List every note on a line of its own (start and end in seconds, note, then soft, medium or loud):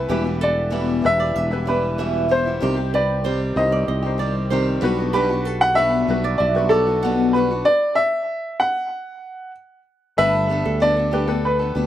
0.00 0.10 C4 soft
0.00 0.43 B4 medium
0.09 1.00 E1 loud
0.09 0.25 E2 medium
0.09 0.25 B2 medium
0.09 0.26 E3 medium
0.09 0.77 G3 medium
0.09 0.25 G3 medium
0.09 0.24 B3 medium
0.09 0.78 E4 medium
0.09 0.23 E4 medium
0.09 0.41 G4 medium
0.09 0.78 B4 medium
0.24 0.70 E3 soft
0.24 0.70 G3 soft
0.24 0.71 B3 soft
0.24 0.71 E4 soft
0.41 0.71 A4 medium
0.41 1.07 D5 medium
0.70 1.03 E2 medium
0.70 1.03 B2 medium
0.70 1.01 E3 medium
0.70 1.03 G3 medium
0.70 1.04 B3 medium
0.70 1.04 E4 medium
0.70 0.88 B4 medium
1.02 1.34 E1 medium
1.02 1.50 E3 soft
1.02 1.37 G3 medium
1.02 1.51 G3 soft
1.02 1.51 B3 medium
1.02 1.38 E4 medium
1.02 1.38 B4 medium
1.02 1.64 E5 medium
1.20 1.36 D5 medium
1.36 2.58 E1 loud
1.36 1.66 E5 medium
1.50 1.64 E3 soft
1.50 2.30 G3 medium
1.50 1.66 G3 soft
1.50 1.67 B3 soft
1.50 1.67 E4 soft
1.50 2.30 E4 medium
1.50 2.31 B4 medium
1.66 1.98 E3 soft
1.66 1.98 G3 medium
1.66 1.99 B3 medium
1.66 2.33 B4 medium
1.66 1.82 D5 medium
1.70 1.99 E4 medium
1.98 2.30 E2 medium
1.98 2.30 B2 medium
1.98 2.27 E3 medium
1.98 2.28 G3 medium
1.98 2.29 B3 medium
1.98 2.30 E4 medium
1.98 2.43 E5 medium
2.29 2.45 E3 medium
2.29 2.46 G3 medium
2.29 2.46 B3 medium
2.29 2.44 E4 medium
2.29 2.96 C5 medium
2.45 2.61 E3 soft
2.45 2.61 G3 soft
2.45 2.62 B3 soft
2.45 2.62 E4 soft
2.60 3.53 C2 loud
2.60 2.77 C3 medium
2.60 2.78 D#3 medium
2.60 3.29 G3 medium
2.60 2.78 G3 medium
2.60 2.76 C4 medium
2.60 3.29 D#4 medium
2.60 2.92 G4 medium
2.60 2.75 G4 medium
2.60 3.30 C5 medium
2.76 3.25 G3 soft
2.76 3.25 C4 soft
2.76 3.24 G4 medium
2.94 3.24 B4 medium
2.94 3.59 D5 medium
3.24 3.56 C3 medium
3.24 3.55 D#3 medium
3.24 3.56 G3 medium
3.24 3.57 C4 medium
3.24 3.57 G4 medium
3.24 3.40 C5 medium
3.56 3.85 C2 loud
3.56 4.04 D#3 soft
3.56 3.91 G3 medium
3.56 4.04 G3 soft
3.56 4.04 C4 soft
3.56 3.91 D#4 medium
3.56 4.01 G4 medium
3.56 3.92 C5 medium
3.56 4.16 D#5 medium
3.72 3.87 D5 medium
3.88 4.79 C2 medium
3.88 4.18 D#5 medium
4.02 4.80 G3 medium
4.02 4.18 G3 soft
4.02 4.19 C4 soft
4.02 4.84 D#4 medium
4.02 4.19 G4 soft
4.02 4.84 C5 medium
4.18 4.50 D#3 medium
4.18 4.50 G3 medium
4.18 4.51 C4 medium
4.18 4.52 G4 medium
4.18 4.34 D5 medium
4.50 4.83 C3 medium
4.50 4.81 D#3 medium
4.50 4.81 G3 medium
4.50 4.83 C4 medium
4.50 4.83 G4 medium
4.50 4.66 C5 medium
4.81 6.05 B1 medium
4.81 5.83 G3 medium
4.81 4.98 G3 medium
4.81 4.99 B3 medium
4.81 4.99 D4 medium
4.81 5.84 F#4 medium
4.81 4.97 F#4 medium
4.81 4.97 B4 medium
4.81 5.84 B4 medium
4.98 5.14 B3 soft
4.98 5.14 D4 medium
4.98 5.14 F#4 medium
5.13 5.30 B2 medium
5.13 5.30 G3 medium
5.13 5.31 B3 medium
5.13 5.31 D4 medium
5.13 5.29 F#4 medium
5.13 5.45 G4 loud
5.13 5.63 B4 medium
5.30 5.77 B3 soft
5.30 5.77 D4 soft
5.30 5.77 F#4 medium
5.45 5.75 A4 medium
5.61 5.76 F#5 medium
5.75 6.08 B2 medium
5.75 6.06 G3 medium
5.75 6.07 B3 medium
5.75 6.08 D4 medium
5.75 6.09 F#4 medium
5.75 5.92 B4 medium
5.75 6.41 E5 medium
6.07 6.38 B1 loud
6.07 6.55 G3 soft
6.07 6.43 G3 medium
6.07 6.56 B3 medium
6.07 6.55 D4 medium
6.07 6.43 F#4 medium
6.07 6.53 F#4 medium
6.07 6.43 B4 medium
6.24 6.39 D5 medium
6.38 7.62 B1 medium
6.38 6.68 D5 medium
6.38 6.70 E5 medium
6.54 7.34 G3 medium
6.54 6.72 D4 soft
6.54 6.71 F#4 medium
6.54 7.35 F#4 medium
6.54 7.35 B4 medium
6.58 6.71 B3 soft
6.69 6.87 G3 medium
6.69 6.88 B3 medium
6.69 7.35 A4 medium
6.69 6.86 D5 medium
6.73 6.87 D4 medium
6.73 6.85 F#4 medium
6.87 7.03 B3 soft
6.87 7.04 D4 soft
6.87 7.03 F#4 soft
7.03 7.35 B2 medium
7.03 7.33 G3 medium
7.03 7.35 B3 medium
7.03 7.35 D4 medium
7.03 7.36 F#4 medium
7.03 7.47 F#5 medium
7.33 7.50 G3 medium
7.33 7.51 B3 medium
7.33 7.51 D4 medium
7.33 7.66 B4 medium
7.37 7.50 F#4 medium
7.51 7.68 B3 soft
7.51 7.67 D4 soft
7.51 7.66 F#4 soft
7.65 7.98 D5 loud
7.95 8.56 E5 medium
8.60 9.51 F#5 medium
10.17 10.62 G1 loud
10.17 10.48 G3 medium
10.17 10.85 A3 medium
10.17 10.49 B3 medium
10.17 10.50 D4 medium
10.17 10.86 G4 medium
10.17 10.51 A4 medium
10.17 10.33 B4 loud
10.17 10.86 B4 medium
10.17 10.83 E5 loud
10.49 10.79 G3 medium
10.49 10.80 B3 medium
10.49 10.81 D4 medium
10.49 10.82 A4 medium
10.65 11.72 D2 medium
10.65 10.96 A4 medium
10.80 10.97 G3 medium
10.80 10.97 B3 medium
10.80 10.97 D4 medium
10.80 10.95 A4 medium
10.80 11.47 D5 medium
10.97 11.11 B3 soft
10.97 11.12 D4 soft
10.97 11.13 A4 medium
11.11 11.28 G3 medium
11.11 11.24 A3 medium
11.11 11.28 B3 medium
11.11 11.28 D4 medium
11.11 11.28 G4 medium
11.11 11.24 G4 medium
11.11 11.26 A4 medium
11.11 11.25 B4 medium
11.26 11.87 A3 medium
11.26 11.60 D4 soft
11.26 11.87 G4 medium
11.26 11.58 A4 medium
11.26 11.87 B4 medium
11.31 11.61 B3 soft
11.45 11.87 B4 medium
11.59 11.75 B3 soft
11.59 11.76 D4 soft
11.59 11.75 A4 soft
11.75 11.87 D2 medium
11.75 11.87 G3 medium
11.75 11.87 B3 medium
11.75 11.87 D4 medium
11.75 11.87 A4 medium